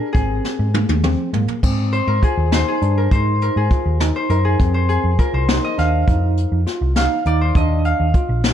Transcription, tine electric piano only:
0, 0, Header, 1, 2, 480
1, 0, Start_track
1, 0, Tempo, 592300
1, 117, Time_signature, 5, 3, 24, 8
1, 6914, End_track
2, 0, Start_track
2, 0, Title_t, "Tine electric piano"
2, 0, Program_c, 0, 4
2, 0, Note_on_c, 0, 62, 61
2, 88, Note_off_c, 0, 62, 0
2, 121, Note_on_c, 0, 60, 74
2, 542, Note_off_c, 0, 60, 0
2, 600, Note_on_c, 0, 58, 63
2, 811, Note_off_c, 0, 58, 0
2, 841, Note_on_c, 0, 60, 75
2, 1052, Note_off_c, 0, 60, 0
2, 1082, Note_on_c, 0, 58, 69
2, 1293, Note_off_c, 0, 58, 0
2, 1325, Note_on_c, 0, 60, 81
2, 1746, Note_off_c, 0, 60, 0
2, 1804, Note_on_c, 0, 65, 67
2, 2014, Note_off_c, 0, 65, 0
2, 2042, Note_on_c, 0, 63, 81
2, 2254, Note_off_c, 0, 63, 0
2, 2282, Note_on_c, 0, 62, 69
2, 2494, Note_off_c, 0, 62, 0
2, 2523, Note_on_c, 0, 63, 73
2, 2945, Note_off_c, 0, 63, 0
2, 3005, Note_on_c, 0, 65, 63
2, 3215, Note_off_c, 0, 65, 0
2, 3248, Note_on_c, 0, 63, 78
2, 3457, Note_off_c, 0, 63, 0
2, 3490, Note_on_c, 0, 63, 66
2, 3698, Note_off_c, 0, 63, 0
2, 3726, Note_on_c, 0, 60, 77
2, 4146, Note_off_c, 0, 60, 0
2, 4206, Note_on_c, 0, 65, 65
2, 4416, Note_off_c, 0, 65, 0
2, 4447, Note_on_c, 0, 63, 77
2, 4656, Note_off_c, 0, 63, 0
2, 4682, Note_on_c, 0, 62, 68
2, 4893, Note_off_c, 0, 62, 0
2, 4924, Note_on_c, 0, 63, 74
2, 5343, Note_off_c, 0, 63, 0
2, 5403, Note_on_c, 0, 65, 67
2, 5613, Note_off_c, 0, 65, 0
2, 5645, Note_on_c, 0, 63, 76
2, 5853, Note_off_c, 0, 63, 0
2, 5886, Note_on_c, 0, 63, 72
2, 6093, Note_off_c, 0, 63, 0
2, 6127, Note_on_c, 0, 62, 81
2, 6543, Note_off_c, 0, 62, 0
2, 6603, Note_on_c, 0, 65, 66
2, 6811, Note_off_c, 0, 65, 0
2, 6841, Note_on_c, 0, 63, 76
2, 6914, Note_off_c, 0, 63, 0
2, 6914, End_track
0, 0, End_of_file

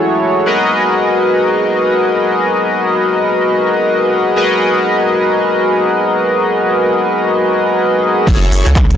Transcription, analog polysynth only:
0, 0, Header, 1, 2, 480
1, 0, Start_track
1, 0, Tempo, 500000
1, 8613, End_track
2, 0, Start_track
2, 0, Title_t, "Analog polysynth"
2, 0, Program_c, 0, 90
2, 0, Note_on_c, 0, 64, 73
2, 0, Note_on_c, 0, 66, 68
2, 0, Note_on_c, 0, 68, 68
2, 0, Note_on_c, 0, 69, 66
2, 0, Note_on_c, 0, 73, 82
2, 423, Note_off_c, 0, 64, 0
2, 425, Note_off_c, 0, 66, 0
2, 427, Note_off_c, 0, 68, 0
2, 428, Note_off_c, 0, 69, 0
2, 430, Note_off_c, 0, 73, 0
2, 442, Note_on_c, 0, 66, 73
2, 445, Note_on_c, 0, 68, 66
2, 449, Note_on_c, 0, 70, 67
2, 452, Note_on_c, 0, 71, 69
2, 455, Note_on_c, 0, 75, 84
2, 4169, Note_off_c, 0, 66, 0
2, 4171, Note_off_c, 0, 68, 0
2, 4173, Note_off_c, 0, 70, 0
2, 4174, Note_off_c, 0, 71, 0
2, 4176, Note_off_c, 0, 75, 0
2, 4188, Note_on_c, 0, 66, 74
2, 4192, Note_on_c, 0, 68, 69
2, 4195, Note_on_c, 0, 70, 69
2, 4198, Note_on_c, 0, 71, 70
2, 4201, Note_on_c, 0, 75, 85
2, 7916, Note_off_c, 0, 66, 0
2, 7918, Note_off_c, 0, 68, 0
2, 7919, Note_off_c, 0, 70, 0
2, 7921, Note_off_c, 0, 71, 0
2, 7922, Note_off_c, 0, 75, 0
2, 7937, Note_on_c, 0, 64, 88
2, 7939, Note_on_c, 0, 66, 80
2, 7941, Note_on_c, 0, 68, 81
2, 7942, Note_on_c, 0, 69, 83
2, 7944, Note_on_c, 0, 73, 96
2, 8112, Note_off_c, 0, 64, 0
2, 8113, Note_off_c, 0, 66, 0
2, 8114, Note_off_c, 0, 68, 0
2, 8115, Note_off_c, 0, 69, 0
2, 8115, Note_off_c, 0, 73, 0
2, 8172, Note_on_c, 0, 64, 79
2, 8173, Note_on_c, 0, 66, 73
2, 8175, Note_on_c, 0, 68, 75
2, 8177, Note_on_c, 0, 69, 75
2, 8179, Note_on_c, 0, 73, 86
2, 8347, Note_off_c, 0, 64, 0
2, 8347, Note_off_c, 0, 66, 0
2, 8348, Note_off_c, 0, 68, 0
2, 8349, Note_off_c, 0, 69, 0
2, 8350, Note_off_c, 0, 73, 0
2, 8613, End_track
0, 0, End_of_file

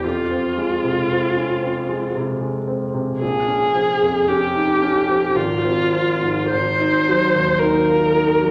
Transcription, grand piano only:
0, 0, Header, 1, 2, 480
1, 0, Start_track
1, 0, Key_signature, -4, "minor"
1, 0, Tempo, 1063830
1, 18, Time_signature, 3, 2, 24, 8
1, 2418, Tempo, 1156069
1, 2898, Tempo, 1084991
1, 3780, End_track
2, 0, Start_track
2, 0, Title_t, "Grand piano"
2, 0, Program_c, 0, 0
2, 0, Control_c, 0, 64, 127
2, 19, Note_on_c, 0, 41, 36
2, 26, Control_c, 0, 64, 0
2, 95, Control_c, 0, 64, 127
2, 139, Note_on_c, 0, 60, 28
2, 261, Note_on_c, 0, 56, 31
2, 329, Note_off_c, 0, 60, 0
2, 377, Note_on_c, 0, 48, 31
2, 450, Note_off_c, 0, 56, 0
2, 497, Note_on_c, 0, 60, 34
2, 569, Note_off_c, 0, 48, 0
2, 616, Note_on_c, 0, 61, 25
2, 689, Note_off_c, 0, 60, 0
2, 734, Note_on_c, 0, 60, 32
2, 736, Note_off_c, 0, 61, 0
2, 853, Note_on_c, 0, 56, 28
2, 927, Note_off_c, 0, 60, 0
2, 971, Note_on_c, 0, 48, 33
2, 1045, Note_off_c, 0, 56, 0
2, 1087, Note_on_c, 0, 56, 30
2, 1164, Note_off_c, 0, 48, 0
2, 1208, Note_on_c, 0, 60, 31
2, 1281, Note_off_c, 0, 56, 0
2, 1328, Note_on_c, 0, 48, 32
2, 1401, Note_off_c, 0, 60, 0
2, 1434, Note_off_c, 0, 41, 0
2, 1449, Note_off_c, 0, 48, 0
2, 1451, Note_on_c, 0, 34, 38
2, 1458, Control_c, 0, 64, 0
2, 1517, Control_c, 0, 64, 127
2, 1567, Note_on_c, 0, 61, 34
2, 1688, Note_on_c, 0, 53, 33
2, 1762, Note_off_c, 0, 61, 0
2, 1813, Note_on_c, 0, 41, 33
2, 1883, Note_off_c, 0, 53, 0
2, 1933, Note_on_c, 0, 61, 36
2, 2006, Note_off_c, 0, 41, 0
2, 2055, Note_on_c, 0, 63, 27
2, 2126, Note_off_c, 0, 61, 0
2, 2175, Note_off_c, 0, 63, 0
2, 2175, Note_on_c, 0, 61, 36
2, 2296, Note_on_c, 0, 53, 31
2, 2370, Note_off_c, 0, 61, 0
2, 2401, Note_off_c, 0, 34, 0
2, 2416, Note_on_c, 0, 32, 45
2, 2419, Note_off_c, 0, 53, 0
2, 2426, Control_c, 0, 64, 0
2, 2494, Control_c, 0, 64, 127
2, 2535, Note_on_c, 0, 60, 36
2, 2655, Note_on_c, 0, 53, 33
2, 2730, Note_off_c, 0, 60, 0
2, 2778, Note_on_c, 0, 44, 32
2, 2850, Note_off_c, 0, 53, 0
2, 2883, Note_off_c, 0, 32, 0
2, 2898, Note_off_c, 0, 44, 0
2, 2900, Note_on_c, 0, 32, 44
2, 2906, Control_c, 0, 64, 0
2, 2993, Control_c, 0, 64, 127
2, 3023, Note_on_c, 0, 63, 34
2, 3150, Note_on_c, 0, 54, 37
2, 3216, Note_off_c, 0, 63, 0
2, 3267, Note_on_c, 0, 39, 31
2, 3337, Note_off_c, 0, 54, 0
2, 3385, Note_on_c, 0, 63, 38
2, 3454, Note_off_c, 0, 39, 0
2, 3501, Note_on_c, 0, 65, 29
2, 3572, Note_off_c, 0, 63, 0
2, 3619, Note_off_c, 0, 65, 0
2, 3619, Note_on_c, 0, 63, 36
2, 3737, Note_on_c, 0, 54, 32
2, 3780, Note_off_c, 0, 32, 0
2, 3780, Note_off_c, 0, 54, 0
2, 3780, Note_off_c, 0, 63, 0
2, 3780, End_track
0, 0, End_of_file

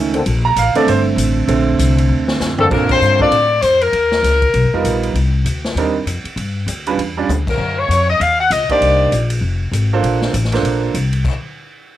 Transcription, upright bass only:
0, 0, Header, 1, 3, 480
1, 0, Start_track
1, 0, Key_signature, -2, "major"
1, 0, Tempo, 304878
1, 422, Time_signature, 4, 2, 24, 8
1, 18847, End_track
2, 0, Start_track
2, 0, Title_t, "Upright bass"
2, 0, Program_c, 0, 32
2, 0, Note_on_c, 0, 37, 91
2, 393, Note_off_c, 0, 37, 0
2, 411, Note_on_c, 0, 34, 98
2, 875, Note_off_c, 0, 34, 0
2, 884, Note_on_c, 0, 33, 93
2, 1160, Note_off_c, 0, 33, 0
2, 1367, Note_on_c, 0, 31, 94
2, 1820, Note_off_c, 0, 31, 0
2, 1829, Note_on_c, 0, 33, 92
2, 2309, Note_off_c, 0, 33, 0
2, 2325, Note_on_c, 0, 34, 89
2, 2797, Note_off_c, 0, 34, 0
2, 2811, Note_on_c, 0, 36, 97
2, 3280, Note_off_c, 0, 36, 0
2, 3291, Note_on_c, 0, 38, 93
2, 3760, Note_off_c, 0, 38, 0
2, 3782, Note_on_c, 0, 41, 90
2, 4246, Note_off_c, 0, 41, 0
2, 4257, Note_on_c, 0, 46, 80
2, 4724, Note_off_c, 0, 46, 0
2, 4739, Note_on_c, 0, 43, 86
2, 5190, Note_off_c, 0, 43, 0
2, 5200, Note_on_c, 0, 45, 83
2, 5676, Note_off_c, 0, 45, 0
2, 5706, Note_on_c, 0, 41, 80
2, 6170, Note_off_c, 0, 41, 0
2, 6178, Note_on_c, 0, 39, 81
2, 6646, Note_off_c, 0, 39, 0
2, 6654, Note_on_c, 0, 37, 87
2, 7125, Note_off_c, 0, 37, 0
2, 7143, Note_on_c, 0, 35, 85
2, 7305, Note_on_c, 0, 31, 56
2, 7329, Note_off_c, 0, 35, 0
2, 7448, Note_off_c, 0, 31, 0
2, 7458, Note_on_c, 0, 29, 67
2, 7610, Note_off_c, 0, 29, 0
2, 7623, Note_on_c, 0, 34, 82
2, 8081, Note_off_c, 0, 34, 0
2, 8091, Note_on_c, 0, 36, 88
2, 8564, Note_off_c, 0, 36, 0
2, 8576, Note_on_c, 0, 38, 85
2, 9044, Note_off_c, 0, 38, 0
2, 9053, Note_on_c, 0, 39, 82
2, 9527, Note_off_c, 0, 39, 0
2, 9536, Note_on_c, 0, 41, 78
2, 9810, Note_off_c, 0, 41, 0
2, 10016, Note_on_c, 0, 43, 80
2, 10488, Note_off_c, 0, 43, 0
2, 10496, Note_on_c, 0, 38, 83
2, 10968, Note_off_c, 0, 38, 0
2, 10986, Note_on_c, 0, 40, 80
2, 11454, Note_off_c, 0, 40, 0
2, 11471, Note_on_c, 0, 38, 80
2, 11919, Note_off_c, 0, 38, 0
2, 11929, Note_on_c, 0, 42, 83
2, 12405, Note_off_c, 0, 42, 0
2, 12414, Note_on_c, 0, 41, 87
2, 12887, Note_off_c, 0, 41, 0
2, 12909, Note_on_c, 0, 39, 87
2, 13375, Note_off_c, 0, 39, 0
2, 13389, Note_on_c, 0, 37, 82
2, 13658, Note_off_c, 0, 37, 0
2, 13871, Note_on_c, 0, 36, 82
2, 14336, Note_off_c, 0, 36, 0
2, 14350, Note_on_c, 0, 34, 85
2, 14808, Note_off_c, 0, 34, 0
2, 14817, Note_on_c, 0, 29, 83
2, 15288, Note_off_c, 0, 29, 0
2, 15296, Note_on_c, 0, 32, 84
2, 15767, Note_off_c, 0, 32, 0
2, 15790, Note_on_c, 0, 34, 89
2, 16254, Note_off_c, 0, 34, 0
2, 16270, Note_on_c, 0, 33, 87
2, 16726, Note_off_c, 0, 33, 0
2, 16735, Note_on_c, 0, 34, 84
2, 17206, Note_off_c, 0, 34, 0
2, 17229, Note_on_c, 0, 36, 86
2, 17693, Note_off_c, 0, 36, 0
2, 18847, End_track
3, 0, Start_track
3, 0, Title_t, "Muted upright bass strokes"
3, 1176, Note_on_c, 9, 29, 44
3, 1333, Note_off_c, 9, 29, 0
3, 9827, Note_on_c, 9, 29, 41
3, 9985, Note_off_c, 9, 29, 0
3, 13681, Note_on_c, 9, 29, 38
3, 13839, Note_off_c, 9, 29, 0
3, 18847, End_track
0, 0, End_of_file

